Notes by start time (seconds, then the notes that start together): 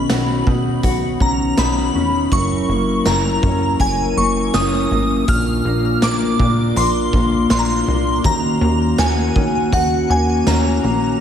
Already playing: B2 D#3 B3 C#4 B5
0.09 B1 F#4, snare, closed hi-hat
0.47 B2 D#4, kick
0.83 B1 F#4, kick, closed hi-hat
1.20 B1 C#4 A#5, kick
1.57 B1 D#4 B5, snare, closed hi-hat
1.95 E1 C#4
2.32 F#1 F#2 F#3 E4 A#4 C#6, kick, closed hi-hat
2.69 F#1 A#3
3.05 F#1 A#4 A#5, snare, closed hi-hat
3.43 F#2 C#4, kick
3.80 F#1 A#4 G#5, kick, closed hi-hat
4.17 F#1 A#3 C#6
4.54 F#1 C#4 D#6, snare, closed hi-hat
4.91 G#1 A#3
5.28 A#1 A#2 A#3 D4 F4 F6, kick, closed hi-hat
5.65 A#1 A#3
6.02 A#1 A#4 D6, snare, closed hi-hat
6.20 F4
6.39 A#2 D4, kick
6.76 A#1 A#4 C6, closed hi-hat
7.13 A#1 A#3, kick
7.50 A#1 D4 C6, snare, closed hi-hat
7.59 A#5
7.65 C6
7.88 C2 A#3
8.24 D#2 D#3 C#4 F#4 A#5, kick, closed hi-hat
8.61 D#2 A#3
8.69 F#4
8.98 D#2 F#4 G#5, snare, closed hi-hat
9.35 D#3 C#4, kick
9.72 D#2 F#4 F#5, kick, closed hi-hat
10.09 D#2 A#3 G#5
10.46 D#2 C#4 A#5, snare, closed hi-hat
10.83 A#1 A#3